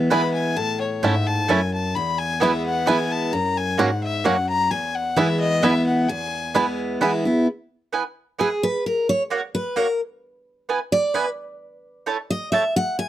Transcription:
0.10 0.55 E3 medium
0.10 0.55 G#3 medium
0.10 0.20 B3 medium
0.10 0.55 B3 medium
0.10 0.22 B3 medium
0.10 0.20 E4 medium
0.10 0.55 E4 medium
0.10 0.22 E4 medium
0.10 0.21 B4 loud
0.10 0.21 G#5 loud
0.10 0.33 B5 loud
0.34 0.58 G#5 medium
0.57 1.44 A2 medium
0.57 0.80 A5 loud
0.80 1.05 C#5 medium
1.03 1.47 G#2 medium
1.03 1.12 A3 medium
1.03 1.14 A3 medium
1.03 1.14 C#4 medium
1.03 1.12 E4 medium
1.03 1.14 E4 medium
1.03 1.13 C#5 medium
1.03 1.29 E5 medium
1.03 1.13 A5 medium
1.27 1.51 A5 loud
1.48 1.93 F#2 medium
1.48 1.58 A3 medium
1.48 1.60 A3 medium
1.48 1.60 C#4 medium
1.48 1.58 E4 loud
1.48 1.60 E4 medium
1.48 1.58 C#5 medium
1.48 1.73 G#5 medium
1.48 1.58 A5 loud
1.73 1.97 A5 loud
1.95 2.83 E2 medium
1.95 2.20 B5 loud
2.19 2.42 G#5 loud
2.40 2.85 E3 medium
2.40 2.85 G#3 medium
2.40 2.50 B3 medium
2.40 2.52 B3 medium
2.40 2.86 B3 loud
2.40 2.50 E4 medium
2.40 2.52 E4 medium
2.40 2.86 E4 medium
2.40 2.50 B4 medium
2.40 2.65 E5 medium
2.40 2.50 G#5 medium
2.66 2.89 F#5 loud
2.86 3.31 E3 medium
2.86 3.31 G#3 medium
2.86 2.96 B3 medium
2.86 2.98 B3 medium
2.86 3.31 B3 loud
2.86 2.96 E4 medium
2.86 2.98 E4 medium
2.86 3.31 E4 medium
2.86 2.96 B4 medium
2.86 2.96 G#5 medium
2.86 3.13 G#5 loud
3.12 3.34 A5 medium
3.33 3.79 F#2 medium
3.33 3.59 A#5 loud
3.58 3.82 G#5 loud
3.78 4.23 G#2 loud
3.78 3.88 A#3 medium
3.78 3.89 A#3 medium
3.78 3.90 C#4 medium
3.78 3.88 F#4 medium
3.78 3.90 F#4 medium
3.78 3.88 C#5 medium
3.78 3.88 F#5 medium
3.78 4.03 F#5 medium
4.03 4.27 E5 loud
4.24 4.69 F#2 medium
4.24 4.34 A#3 medium
4.24 4.35 A#3 medium
4.24 4.36 C#4 medium
4.24 4.34 F#4 medium
4.24 4.36 F#4 medium
4.24 4.34 C#5 loud
4.24 4.34 F#5 medium
4.24 4.49 F#5 medium
4.49 4.73 A#5 loud
4.71 5.58 E2 medium
4.71 4.97 G#5 medium
4.95 5.18 F#5 loud
5.16 5.60 E3 loud
5.16 5.61 G#3 medium
5.16 5.26 B3 medium
5.16 5.61 B3 medium
5.16 5.28 B3 medium
5.16 5.26 E4 medium
5.16 5.61 E4 loud
5.16 5.28 E4 medium
5.16 5.26 B4 loud
5.16 5.39 E5 loud
5.16 5.26 G#5 loud
5.40 5.64 D#5 loud
5.62 6.06 E3 medium
5.62 6.07 G#3 medium
5.62 5.72 B3 medium
5.62 6.07 B3 medium
5.62 5.74 B3 medium
5.62 5.72 E4 medium
5.62 5.74 E4 medium
5.62 6.07 E4 medium
5.62 5.72 B4 loud
5.62 5.86 E5 loud
5.62 5.72 G#5 loud
5.86 6.10 F#5 medium
6.09 6.97 E2 medium
6.09 6.79 G#5 loud
6.54 6.98 E3 medium
6.54 6.99 G#3 loud
6.54 6.64 B3 medium
6.54 6.65 B3 medium
6.54 6.99 B3 medium
6.54 6.64 E4 medium
6.54 6.66 E4 medium
6.54 6.99 E4 loud
6.54 6.64 B4 medium
6.54 6.64 G#5 medium
7.01 7.24 E3 medium
7.01 7.24 G#3 medium
7.01 7.10 B3 medium
7.01 7.12 B3 medium
7.01 7.24 B3 medium
7.01 7.10 E4 medium
7.01 7.12 E4 medium
7.01 7.24 E4 loud
7.01 7.10 B4 medium
7.01 7.11 G#5 loud
7.25 7.47 B3 medium
7.25 7.46 E4 medium
7.93 8.02 B3 medium
7.93 8.02 E4 medium
7.93 8.02 B4 medium
7.93 8.03 G#5 medium
8.39 8.48 B3 medium
8.39 8.48 E4 loud
8.39 8.63 G#4 medium
8.39 8.48 B4 loud
8.39 8.49 G#5 loud
8.63 8.84 B4 loud
8.86 9.09 A#4 medium
9.09 9.22 C#5 loud
9.30 9.40 A#3 medium
9.30 9.40 F#4 loud
9.30 9.40 C#5 medium
9.30 9.40 F#5 loud
9.55 9.77 B4 medium
9.76 9.86 A#3 loud
9.76 9.86 F#4 medium
9.76 10.00 A#4 medium
9.76 9.86 C#5 loud
9.76 9.86 F#5 loud
10.69 10.78 B3 medium
10.69 10.78 E4 medium
10.69 10.78 B4 medium
10.69 10.79 G#5 medium
10.92 11.14 D5 loud
11.14 11.24 B3 medium
11.14 11.24 E4 medium
11.14 11.29 B4 medium
11.14 11.24 B4 medium
11.14 11.24 G#5 loud
12.06 12.16 A3 medium
12.06 12.16 E4 medium
12.06 12.16 C#5 loud
12.06 12.17 A5 medium
12.30 12.51 D#5 loud
12.52 12.62 A3 medium
12.52 12.62 E4 medium
12.52 12.62 C#5 loud
12.52 12.76 E5 medium
12.52 12.63 A5 loud
12.76 12.98 F#5 loud
12.99 13.09 G#5 medium

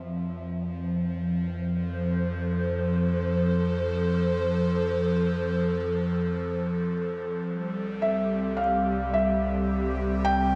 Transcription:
0.00 7.42 F2 medium
0.00 7.48 F3 medium
0.00 7.48 C4 medium
0.00 0.53 E5 medium
1.60 7.48 C5 medium
1.72 10.55 A4 medium
7.47 10.55 C2 medium
7.47 10.55 C3 medium
7.47 10.55 G3 medium
7.85 10.55 C4 medium
7.85 10.55 G4 medium
8.02 8.60 E5 medium
8.57 9.15 F5 medium
9.14 10.28 E5 medium
10.25 10.55 G5 loud

